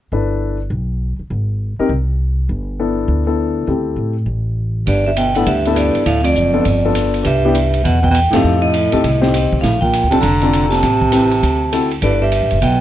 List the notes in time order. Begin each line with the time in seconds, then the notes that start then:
0.12 G1 D4 E4 A4 B4
0.70 B1
1.19 muted upright bass stroke
1.30 G#1
1.79 C4 D#4 G4 A#4, muted upright bass stroke
1.89 C2
2.49 G1
2.80 B3 D4 E4 A4
3.08 D2
3.27 B3 D4 E4 A4
3.67 D2 C4 E4 G4 A4
3.96 A2
4.26 A1
4.87 G1 G2 D5, kick, ride
5.07 G2 E5
5.17 B2 G5, hi-hat pedal, ride
5.35 A2 B3 D4 E4 A4 F#5, ride
5.46 D2 G2 E5, kick, ride
5.65 B3 D4 E4 A4, ride
5.74 G2 D5, hi-hat pedal, ride
5.95 muted upright bass stroke, ride
6.06 D2 A2 F5, kick, ride
6.23 F2 D5, ride
6.35 F#1, hi-hat pedal
6.53 B3 D4 F4 A4
6.65 G1, kick, ride
6.85 B3 D4 F4 A4
6.95 hi-hat pedal, ride
7.14 ride
7.23 C2 G2 E5, kick, ride
7.45 B3 D4 E4 G4
7.55 hi-hat pedal, ride
7.74 ride
7.83 E2 B2 F#5, kick, ride
8.02 B2 G5, kick
8.10 B2
8.15 G5, hi-hat pedal, ride
8.30 F#2 A2 C4 D#4 G4 A4 F5, snare, ride
8.44 F2
8.60 A2 D#5
8.74 hi-hat pedal, ride
8.92 D#2 C4 D#4 G4 A4, ride
9.04 C2, kick, ride
9.21 C4 D#4 G4 C5, snare
9.34 snare, hi-hat pedal, ride
9.52 B1, kick
9.61 A#1 A2 F5, kick, snare, ride
9.81 A#2 G5, kick
9.93 hi-hat pedal, ride
10.04 D2
10.10 B1 C3 C4 D4 F4 A4 A5, ride
10.20 F1 D3 A#5, kick, ride
10.41 C4 D4 F4 A4, ride
10.53 hi-hat pedal, ride
10.68 C3 A5, snare, ride
10.83 A1, kick, snare, ride
11.02 kick
11.12 C4 E4 G4 B4, hi-hat pedal, ride
11.31 ride
11.43 D2, kick, ride
11.72 C4 E4 F#4 A4, hi-hat pedal, ride
11.91 ride
12.00 G1 G2 D4 A4 B4 D5, kick, ride
12.04 E4
12.21 G2 E5
12.32 hi-hat pedal, ride
12.42 A1
12.51 F#1, ride
12.61 B1 B2 G5, kick, ride